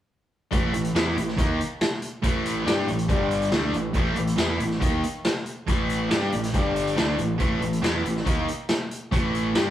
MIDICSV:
0, 0, Header, 1, 4, 480
1, 0, Start_track
1, 0, Tempo, 429799
1, 580, Time_signature, 4, 2, 24, 8
1, 10835, End_track
2, 0, Start_track
2, 0, Title_t, "Overdriven electric guitar"
2, 0, Program_c, 0, 29
2, 571, Note_on_c, 0, 45, 90
2, 581, Note_on_c, 0, 52, 90
2, 589, Note_on_c, 0, 57, 96
2, 798, Note_off_c, 0, 45, 0
2, 804, Note_off_c, 0, 52, 0
2, 811, Note_on_c, 0, 45, 67
2, 817, Note_off_c, 0, 57, 0
2, 818, Note_on_c, 0, 52, 67
2, 1007, Note_off_c, 0, 45, 0
2, 1010, Note_off_c, 0, 52, 0
2, 1067, Note_on_c, 0, 52, 85
2, 1070, Note_on_c, 0, 59, 86
2, 1083, Note_on_c, 0, 64, 90
2, 1295, Note_off_c, 0, 52, 0
2, 1297, Note_off_c, 0, 59, 0
2, 1303, Note_off_c, 0, 64, 0
2, 1306, Note_on_c, 0, 45, 58
2, 1319, Note_on_c, 0, 52, 72
2, 1494, Note_off_c, 0, 45, 0
2, 1500, Note_off_c, 0, 52, 0
2, 1543, Note_on_c, 0, 51, 90
2, 1556, Note_on_c, 0, 63, 94
2, 1559, Note_on_c, 0, 58, 90
2, 1773, Note_off_c, 0, 51, 0
2, 1780, Note_off_c, 0, 63, 0
2, 1781, Note_off_c, 0, 58, 0
2, 2489, Note_on_c, 0, 45, 80
2, 2501, Note_on_c, 0, 52, 92
2, 2515, Note_on_c, 0, 57, 98
2, 2955, Note_off_c, 0, 52, 0
2, 2960, Note_on_c, 0, 55, 96
2, 2965, Note_off_c, 0, 45, 0
2, 2969, Note_off_c, 0, 57, 0
2, 2973, Note_on_c, 0, 62, 91
2, 2982, Note_on_c, 0, 67, 93
2, 3200, Note_off_c, 0, 55, 0
2, 3207, Note_off_c, 0, 62, 0
2, 3211, Note_off_c, 0, 67, 0
2, 3225, Note_on_c, 0, 45, 60
2, 3236, Note_on_c, 0, 52, 62
2, 3412, Note_off_c, 0, 45, 0
2, 3418, Note_off_c, 0, 52, 0
2, 3446, Note_on_c, 0, 43, 90
2, 3452, Note_on_c, 0, 50, 89
2, 3463, Note_on_c, 0, 55, 93
2, 3917, Note_off_c, 0, 50, 0
2, 3923, Note_off_c, 0, 43, 0
2, 3930, Note_on_c, 0, 50, 81
2, 3931, Note_off_c, 0, 55, 0
2, 3938, Note_on_c, 0, 57, 89
2, 3946, Note_on_c, 0, 62, 95
2, 4165, Note_off_c, 0, 50, 0
2, 4169, Note_off_c, 0, 57, 0
2, 4173, Note_off_c, 0, 62, 0
2, 4192, Note_on_c, 0, 52, 70
2, 4194, Note_on_c, 0, 45, 66
2, 4375, Note_off_c, 0, 52, 0
2, 4376, Note_off_c, 0, 45, 0
2, 4420, Note_on_c, 0, 45, 83
2, 4430, Note_on_c, 0, 52, 96
2, 4440, Note_on_c, 0, 57, 99
2, 4649, Note_off_c, 0, 45, 0
2, 4655, Note_off_c, 0, 52, 0
2, 4659, Note_off_c, 0, 57, 0
2, 4668, Note_on_c, 0, 45, 70
2, 4673, Note_on_c, 0, 52, 72
2, 4853, Note_off_c, 0, 45, 0
2, 4855, Note_off_c, 0, 52, 0
2, 4899, Note_on_c, 0, 52, 88
2, 4914, Note_on_c, 0, 59, 85
2, 4918, Note_on_c, 0, 64, 100
2, 5126, Note_off_c, 0, 52, 0
2, 5132, Note_on_c, 0, 45, 58
2, 5135, Note_off_c, 0, 59, 0
2, 5138, Note_off_c, 0, 64, 0
2, 5139, Note_on_c, 0, 52, 65
2, 5325, Note_off_c, 0, 45, 0
2, 5328, Note_off_c, 0, 52, 0
2, 5365, Note_on_c, 0, 51, 88
2, 5372, Note_on_c, 0, 58, 87
2, 5386, Note_on_c, 0, 63, 95
2, 5602, Note_off_c, 0, 51, 0
2, 5605, Note_off_c, 0, 58, 0
2, 5612, Note_off_c, 0, 63, 0
2, 6348, Note_on_c, 0, 45, 84
2, 6362, Note_on_c, 0, 52, 91
2, 6368, Note_on_c, 0, 57, 87
2, 6814, Note_off_c, 0, 45, 0
2, 6819, Note_off_c, 0, 52, 0
2, 6824, Note_off_c, 0, 57, 0
2, 6824, Note_on_c, 0, 55, 84
2, 6836, Note_on_c, 0, 62, 91
2, 6839, Note_on_c, 0, 67, 99
2, 7052, Note_off_c, 0, 55, 0
2, 7058, Note_off_c, 0, 62, 0
2, 7059, Note_off_c, 0, 67, 0
2, 7073, Note_on_c, 0, 45, 65
2, 7082, Note_on_c, 0, 52, 68
2, 7256, Note_off_c, 0, 45, 0
2, 7260, Note_off_c, 0, 52, 0
2, 7310, Note_on_c, 0, 43, 81
2, 7313, Note_on_c, 0, 50, 86
2, 7323, Note_on_c, 0, 55, 104
2, 7760, Note_off_c, 0, 50, 0
2, 7774, Note_on_c, 0, 50, 82
2, 7775, Note_off_c, 0, 43, 0
2, 7776, Note_off_c, 0, 55, 0
2, 7780, Note_on_c, 0, 57, 81
2, 7789, Note_on_c, 0, 62, 98
2, 8007, Note_off_c, 0, 50, 0
2, 8011, Note_off_c, 0, 57, 0
2, 8015, Note_off_c, 0, 62, 0
2, 8022, Note_on_c, 0, 52, 69
2, 8023, Note_on_c, 0, 45, 67
2, 8211, Note_off_c, 0, 45, 0
2, 8211, Note_off_c, 0, 52, 0
2, 8256, Note_on_c, 0, 45, 85
2, 8271, Note_on_c, 0, 52, 84
2, 8271, Note_on_c, 0, 57, 86
2, 8489, Note_off_c, 0, 45, 0
2, 8497, Note_off_c, 0, 52, 0
2, 8497, Note_off_c, 0, 57, 0
2, 8504, Note_on_c, 0, 45, 63
2, 8510, Note_on_c, 0, 52, 70
2, 8692, Note_off_c, 0, 45, 0
2, 8695, Note_off_c, 0, 52, 0
2, 8738, Note_on_c, 0, 52, 91
2, 8738, Note_on_c, 0, 59, 86
2, 8747, Note_on_c, 0, 64, 92
2, 8970, Note_off_c, 0, 52, 0
2, 8971, Note_off_c, 0, 59, 0
2, 8975, Note_off_c, 0, 64, 0
2, 8982, Note_on_c, 0, 45, 61
2, 8992, Note_on_c, 0, 52, 69
2, 9172, Note_off_c, 0, 45, 0
2, 9177, Note_off_c, 0, 52, 0
2, 9210, Note_on_c, 0, 51, 82
2, 9220, Note_on_c, 0, 58, 92
2, 9226, Note_on_c, 0, 63, 104
2, 9447, Note_off_c, 0, 51, 0
2, 9452, Note_off_c, 0, 58, 0
2, 9455, Note_off_c, 0, 63, 0
2, 10181, Note_on_c, 0, 45, 94
2, 10194, Note_on_c, 0, 52, 85
2, 10196, Note_on_c, 0, 57, 91
2, 10655, Note_off_c, 0, 45, 0
2, 10662, Note_off_c, 0, 52, 0
2, 10663, Note_off_c, 0, 57, 0
2, 10675, Note_on_c, 0, 55, 86
2, 10683, Note_on_c, 0, 62, 100
2, 10686, Note_on_c, 0, 67, 92
2, 10835, Note_off_c, 0, 55, 0
2, 10835, Note_off_c, 0, 62, 0
2, 10835, Note_off_c, 0, 67, 0
2, 10835, End_track
3, 0, Start_track
3, 0, Title_t, "Picked electric bass"
3, 0, Program_c, 1, 34
3, 596, Note_on_c, 1, 33, 85
3, 812, Note_off_c, 1, 33, 0
3, 822, Note_on_c, 1, 33, 78
3, 1044, Note_off_c, 1, 33, 0
3, 1058, Note_on_c, 1, 40, 96
3, 1281, Note_off_c, 1, 40, 0
3, 1302, Note_on_c, 1, 33, 77
3, 1523, Note_off_c, 1, 33, 0
3, 1551, Note_on_c, 1, 39, 85
3, 1768, Note_off_c, 1, 39, 0
3, 2499, Note_on_c, 1, 33, 88
3, 2943, Note_off_c, 1, 33, 0
3, 2980, Note_on_c, 1, 43, 88
3, 3201, Note_off_c, 1, 43, 0
3, 3229, Note_on_c, 1, 33, 75
3, 3441, Note_off_c, 1, 33, 0
3, 3448, Note_on_c, 1, 31, 88
3, 3897, Note_off_c, 1, 31, 0
3, 3929, Note_on_c, 1, 38, 84
3, 4155, Note_off_c, 1, 38, 0
3, 4173, Note_on_c, 1, 33, 78
3, 4397, Note_off_c, 1, 33, 0
3, 4417, Note_on_c, 1, 33, 87
3, 4639, Note_off_c, 1, 33, 0
3, 4655, Note_on_c, 1, 33, 79
3, 4877, Note_off_c, 1, 33, 0
3, 4885, Note_on_c, 1, 40, 94
3, 5112, Note_off_c, 1, 40, 0
3, 5126, Note_on_c, 1, 33, 78
3, 5353, Note_off_c, 1, 33, 0
3, 5379, Note_on_c, 1, 39, 84
3, 5599, Note_off_c, 1, 39, 0
3, 6352, Note_on_c, 1, 33, 85
3, 6790, Note_off_c, 1, 33, 0
3, 6831, Note_on_c, 1, 43, 85
3, 7046, Note_off_c, 1, 43, 0
3, 7069, Note_on_c, 1, 33, 74
3, 7285, Note_off_c, 1, 33, 0
3, 7308, Note_on_c, 1, 31, 84
3, 7748, Note_off_c, 1, 31, 0
3, 7799, Note_on_c, 1, 38, 85
3, 8011, Note_off_c, 1, 38, 0
3, 8028, Note_on_c, 1, 33, 75
3, 8246, Note_off_c, 1, 33, 0
3, 8269, Note_on_c, 1, 33, 85
3, 8486, Note_off_c, 1, 33, 0
3, 8501, Note_on_c, 1, 33, 81
3, 8722, Note_off_c, 1, 33, 0
3, 8743, Note_on_c, 1, 40, 92
3, 8964, Note_off_c, 1, 40, 0
3, 8982, Note_on_c, 1, 33, 72
3, 9203, Note_off_c, 1, 33, 0
3, 9231, Note_on_c, 1, 39, 88
3, 9448, Note_off_c, 1, 39, 0
3, 10188, Note_on_c, 1, 33, 92
3, 10632, Note_off_c, 1, 33, 0
3, 10672, Note_on_c, 1, 43, 90
3, 10835, Note_off_c, 1, 43, 0
3, 10835, End_track
4, 0, Start_track
4, 0, Title_t, "Drums"
4, 586, Note_on_c, 9, 42, 66
4, 588, Note_on_c, 9, 36, 103
4, 697, Note_off_c, 9, 42, 0
4, 700, Note_off_c, 9, 36, 0
4, 824, Note_on_c, 9, 42, 60
4, 936, Note_off_c, 9, 42, 0
4, 943, Note_on_c, 9, 42, 68
4, 1054, Note_off_c, 9, 42, 0
4, 1069, Note_on_c, 9, 42, 73
4, 1072, Note_on_c, 9, 38, 113
4, 1181, Note_off_c, 9, 42, 0
4, 1184, Note_off_c, 9, 38, 0
4, 1313, Note_on_c, 9, 42, 67
4, 1425, Note_off_c, 9, 42, 0
4, 1427, Note_on_c, 9, 38, 33
4, 1539, Note_off_c, 9, 38, 0
4, 1544, Note_on_c, 9, 36, 106
4, 1544, Note_on_c, 9, 42, 68
4, 1656, Note_off_c, 9, 36, 0
4, 1656, Note_off_c, 9, 42, 0
4, 1793, Note_on_c, 9, 42, 68
4, 1904, Note_off_c, 9, 42, 0
4, 2020, Note_on_c, 9, 42, 70
4, 2024, Note_on_c, 9, 38, 108
4, 2132, Note_off_c, 9, 42, 0
4, 2135, Note_off_c, 9, 38, 0
4, 2255, Note_on_c, 9, 42, 65
4, 2367, Note_off_c, 9, 42, 0
4, 2497, Note_on_c, 9, 36, 103
4, 2497, Note_on_c, 9, 42, 69
4, 2609, Note_off_c, 9, 36, 0
4, 2609, Note_off_c, 9, 42, 0
4, 2742, Note_on_c, 9, 42, 61
4, 2854, Note_off_c, 9, 42, 0
4, 2986, Note_on_c, 9, 42, 69
4, 2989, Note_on_c, 9, 38, 108
4, 3097, Note_off_c, 9, 42, 0
4, 3101, Note_off_c, 9, 38, 0
4, 3217, Note_on_c, 9, 42, 60
4, 3329, Note_off_c, 9, 42, 0
4, 3334, Note_on_c, 9, 42, 63
4, 3446, Note_off_c, 9, 42, 0
4, 3452, Note_on_c, 9, 36, 105
4, 3452, Note_on_c, 9, 42, 64
4, 3563, Note_off_c, 9, 36, 0
4, 3563, Note_off_c, 9, 42, 0
4, 3694, Note_on_c, 9, 42, 62
4, 3806, Note_off_c, 9, 42, 0
4, 3813, Note_on_c, 9, 42, 62
4, 3925, Note_off_c, 9, 42, 0
4, 3927, Note_on_c, 9, 42, 60
4, 3930, Note_on_c, 9, 38, 108
4, 4039, Note_off_c, 9, 42, 0
4, 4042, Note_off_c, 9, 38, 0
4, 4175, Note_on_c, 9, 42, 58
4, 4287, Note_off_c, 9, 42, 0
4, 4399, Note_on_c, 9, 42, 64
4, 4409, Note_on_c, 9, 36, 102
4, 4510, Note_off_c, 9, 42, 0
4, 4520, Note_off_c, 9, 36, 0
4, 4644, Note_on_c, 9, 42, 59
4, 4756, Note_off_c, 9, 42, 0
4, 4772, Note_on_c, 9, 42, 67
4, 4883, Note_off_c, 9, 42, 0
4, 4890, Note_on_c, 9, 42, 66
4, 4893, Note_on_c, 9, 38, 116
4, 5001, Note_off_c, 9, 42, 0
4, 5005, Note_off_c, 9, 38, 0
4, 5138, Note_on_c, 9, 42, 65
4, 5249, Note_off_c, 9, 42, 0
4, 5259, Note_on_c, 9, 38, 33
4, 5370, Note_off_c, 9, 38, 0
4, 5378, Note_on_c, 9, 36, 99
4, 5380, Note_on_c, 9, 42, 69
4, 5490, Note_off_c, 9, 36, 0
4, 5492, Note_off_c, 9, 42, 0
4, 5622, Note_on_c, 9, 42, 68
4, 5734, Note_off_c, 9, 42, 0
4, 5857, Note_on_c, 9, 42, 68
4, 5861, Note_on_c, 9, 38, 110
4, 5969, Note_off_c, 9, 42, 0
4, 5972, Note_off_c, 9, 38, 0
4, 6096, Note_on_c, 9, 42, 63
4, 6207, Note_off_c, 9, 42, 0
4, 6341, Note_on_c, 9, 36, 100
4, 6343, Note_on_c, 9, 42, 69
4, 6453, Note_off_c, 9, 36, 0
4, 6454, Note_off_c, 9, 42, 0
4, 6581, Note_on_c, 9, 42, 63
4, 6693, Note_off_c, 9, 42, 0
4, 6821, Note_on_c, 9, 42, 67
4, 6824, Note_on_c, 9, 38, 113
4, 6932, Note_off_c, 9, 42, 0
4, 6936, Note_off_c, 9, 38, 0
4, 7062, Note_on_c, 9, 42, 64
4, 7173, Note_off_c, 9, 42, 0
4, 7187, Note_on_c, 9, 42, 69
4, 7190, Note_on_c, 9, 38, 30
4, 7298, Note_off_c, 9, 42, 0
4, 7302, Note_off_c, 9, 38, 0
4, 7302, Note_on_c, 9, 42, 65
4, 7306, Note_on_c, 9, 36, 100
4, 7413, Note_off_c, 9, 42, 0
4, 7418, Note_off_c, 9, 36, 0
4, 7548, Note_on_c, 9, 42, 64
4, 7659, Note_off_c, 9, 42, 0
4, 7673, Note_on_c, 9, 42, 64
4, 7784, Note_off_c, 9, 42, 0
4, 7789, Note_on_c, 9, 42, 64
4, 7792, Note_on_c, 9, 38, 101
4, 7900, Note_off_c, 9, 42, 0
4, 7904, Note_off_c, 9, 38, 0
4, 8024, Note_on_c, 9, 42, 61
4, 8136, Note_off_c, 9, 42, 0
4, 8259, Note_on_c, 9, 42, 63
4, 8266, Note_on_c, 9, 36, 107
4, 8371, Note_off_c, 9, 42, 0
4, 8378, Note_off_c, 9, 36, 0
4, 8509, Note_on_c, 9, 42, 59
4, 8621, Note_off_c, 9, 42, 0
4, 8630, Note_on_c, 9, 42, 64
4, 8742, Note_off_c, 9, 42, 0
4, 8752, Note_on_c, 9, 42, 63
4, 8756, Note_on_c, 9, 38, 110
4, 8864, Note_off_c, 9, 42, 0
4, 8868, Note_off_c, 9, 38, 0
4, 8995, Note_on_c, 9, 42, 64
4, 9107, Note_off_c, 9, 42, 0
4, 9115, Note_on_c, 9, 38, 33
4, 9226, Note_off_c, 9, 38, 0
4, 9228, Note_on_c, 9, 36, 100
4, 9231, Note_on_c, 9, 42, 66
4, 9340, Note_off_c, 9, 36, 0
4, 9343, Note_off_c, 9, 42, 0
4, 9474, Note_on_c, 9, 42, 65
4, 9585, Note_off_c, 9, 42, 0
4, 9701, Note_on_c, 9, 42, 65
4, 9704, Note_on_c, 9, 38, 109
4, 9812, Note_off_c, 9, 42, 0
4, 9816, Note_off_c, 9, 38, 0
4, 9951, Note_on_c, 9, 42, 64
4, 10063, Note_off_c, 9, 42, 0
4, 10189, Note_on_c, 9, 36, 105
4, 10193, Note_on_c, 9, 42, 73
4, 10301, Note_off_c, 9, 36, 0
4, 10305, Note_off_c, 9, 42, 0
4, 10437, Note_on_c, 9, 42, 60
4, 10549, Note_off_c, 9, 42, 0
4, 10667, Note_on_c, 9, 42, 75
4, 10670, Note_on_c, 9, 38, 116
4, 10779, Note_off_c, 9, 42, 0
4, 10782, Note_off_c, 9, 38, 0
4, 10835, End_track
0, 0, End_of_file